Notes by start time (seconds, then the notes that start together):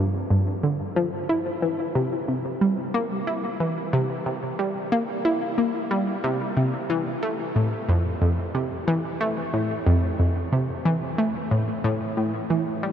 Already playing: G2
0.30 G2
0.63 D3
0.96 F3
1.29 E4
1.62 E3
1.95 C3
2.28 C3
2.61 G3
2.94 A#3
3.27 E4
3.60 E3
3.93 C3
4.26 C3
4.59 G3
4.92 A#3
5.25 E4
5.58 A#3
5.91 G3
6.24 C3
6.57 C3
6.90 E3
7.23 A3
7.56 A2
7.89 F2
8.22 F2
8.55 C3
8.88 E3
9.21 A3
9.54 A2
9.87 F2
10.20 F2
10.52 C3
10.85 E3
11.18 A3
11.51 A2
11.84 A2
12.17 A2
12.50 E3
12.83 G3